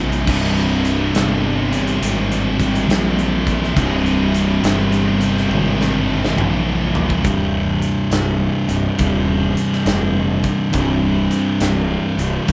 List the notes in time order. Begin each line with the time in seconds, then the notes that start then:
Already playing: A#1 C2 G2 C3 G3 D#4
0.12 closed hi-hat
0.27 C1 C2 G2 C3 G3 D#4, kick, crash
0.57 closed hi-hat
0.85 closed hi-hat
1.15 G1, snare, closed hi-hat
1.71 C2 G2 C3, closed hi-hat
1.87 closed hi-hat
2.01 G#1, closed hi-hat
2.32 closed hi-hat
2.60 kick, closed hi-hat
2.75 closed hi-hat
2.87 A#1 C2 G2 C3, closed hi-hat
2.91 snare
3.19 closed hi-hat
3.47 kick, closed hi-hat
3.63 snare
3.75 C1 C2 G2 C3 G3 D#4, kick, closed hi-hat
4.06 closed hi-hat
4.34 closed hi-hat
4.62 G1, snare, closed hi-hat
4.92 snare, closed hi-hat
5.19 C2 G2 C3, closed hi-hat
5.37 snare
5.49 G#1, high tom
5.81 snare
6.25 snare
6.36 A#1 C2 G2 C3, mid tom
6.95 floor tom
7.10 kick
7.23 C1 C2 G2 C3, kick, closed hi-hat
7.82 closed hi-hat
8.11 C1, snare, closed hi-hat
8.68 C1 C2 G2 C3, closed hi-hat
8.97 D#1 C2 G2 C3, kick, closed hi-hat
9.57 closed hi-hat
9.73 snare
9.85 F1, snare, closed hi-hat
10.44 kick, closed hi-hat
10.71 C1 C2 G2 C3, kick, closed hi-hat
11.31 closed hi-hat
11.60 C1, snare, closed hi-hat
12.17 C1 C2 G2 C3, closed hi-hat
12.47 D#1 C2 G2, kick, closed hi-hat